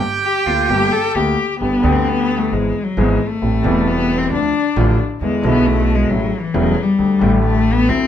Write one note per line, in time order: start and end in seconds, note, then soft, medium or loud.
0.00 1.12 G4 medium
0.00 1.12 G5 medium
0.24 0.48 G4 medium
0.46 0.65 D2 medium
0.46 0.66 D2 soft
0.46 0.66 D3 medium
0.46 0.66 A3 soft
0.46 0.66 A#3 soft
0.46 0.70 F4 medium
0.46 0.66 G4 soft
0.69 0.88 G1 medium
0.69 0.89 G1 medium
0.69 0.89 G2 medium
0.69 0.88 D3 medium
0.69 0.89 A3 medium
0.69 0.89 A#3 medium
0.69 0.93 G4 medium
0.69 0.89 G4 medium
0.92 1.17 A4 medium
1.15 1.34 D2 medium
1.15 1.35 D2 medium
1.15 1.35 D3 medium
1.15 1.35 A3 medium
1.15 1.35 A#3 medium
1.15 1.60 G4 medium
1.15 1.35 G4 medium
1.61 1.80 G1 medium
1.61 1.81 G2 medium
1.61 1.80 D3 soft
1.61 1.80 G3 soft
1.61 1.93 B3 medium
1.61 1.81 B3 soft
1.61 1.80 G4 medium
1.83 2.48 D2 medium
1.83 2.49 D2 medium
1.83 2.49 D3 medium
1.83 2.48 G3 medium
1.83 2.49 B3 medium
1.83 2.50 G4 medium
1.92 2.10 C4 medium
2.08 2.39 B3 medium
2.38 2.54 A3 medium
2.52 2.71 G#1 medium
2.52 2.71 G#2 medium
2.52 2.71 E3 soft
2.52 2.85 G#3 medium
2.52 2.71 G#3 soft
2.52 2.71 B3 soft
2.52 2.71 G#4 soft
2.84 3.01 F#3 medium
2.97 3.16 G#1 medium
2.97 3.16 G#2 medium
2.97 3.16 E3 medium
2.97 3.16 G#3 medium
2.97 3.29 G#3 medium
2.97 3.17 B3 medium
2.97 3.17 G#4 medium
3.28 3.89 A3 medium
3.42 3.61 A1 medium
3.42 3.61 A2 medium
3.42 3.61 C3 soft
3.42 3.61 G3 soft
3.42 3.61 A3 soft
3.42 3.61 E4 medium
3.62 4.28 E1 medium
3.62 4.28 E2 medium
3.62 4.27 C3 medium
3.62 4.28 G3 medium
3.62 4.29 A3 medium
3.67 4.29 E4 medium
3.88 4.19 B3 medium
4.18 4.32 C4 medium
4.31 4.50 D2 medium
4.31 4.51 D2 soft
4.31 4.51 D3 medium
4.31 4.51 F3 soft
4.31 4.51 A3 soft
4.31 4.96 D4 medium
4.31 4.51 F4 medium
4.76 4.95 A1 loud
4.76 4.96 A1 medium
4.76 4.96 A2 medium
4.76 4.96 D3 medium
4.76 4.96 F3 medium
4.76 4.96 A3 medium
4.76 4.96 F4 medium
5.21 5.40 E2 medium
5.21 5.41 E2 medium
5.21 5.40 D3 soft
5.21 5.41 E3 medium
5.21 5.53 G#3 medium
5.21 5.40 G#3 soft
5.21 5.41 B3 soft
5.21 5.41 E4 medium
5.42 6.07 B1 medium
5.42 6.08 B2 medium
5.42 6.06 D3 medium
5.42 6.08 B3 medium
5.42 6.07 G#4 medium
5.46 6.08 E4 medium
5.51 5.68 B3 medium
5.66 5.97 A3 medium
5.95 6.11 G#3 medium
6.10 6.29 A1 medium
6.10 6.29 A1 soft
6.10 6.29 A2 medium
6.10 6.29 C#3 soft
6.10 6.41 F#3 medium
6.10 6.29 G3 soft
6.10 6.29 A3 soft
6.10 6.29 E4 soft
6.39 6.55 E3 medium
6.54 6.73 E1 medium
6.54 6.73 E2 medium
6.54 6.73 C#3 medium
6.54 6.85 F#3 medium
6.54 6.73 G3 medium
6.54 6.73 A3 medium
6.54 6.73 E4 medium
6.83 7.42 G3 medium
6.99 7.18 D2 medium
6.99 7.18 D3 medium
6.99 7.18 G3 soft
6.99 7.18 A3 soft
6.99 7.18 G4 medium
7.19 7.86 A1 medium
7.19 7.86 A2 medium
7.19 7.85 D3 medium
7.19 7.86 G3 medium
7.19 7.86 A3 medium
7.23 7.87 G4 medium
7.43 7.75 A3 loud
7.73 7.91 B3 medium
7.89 8.07 D2 medium
7.89 8.07 D3 soft
7.89 8.07 F#3 soft
7.89 8.07 A3 soft
7.89 8.07 C4 medium
7.89 8.07 E4 medium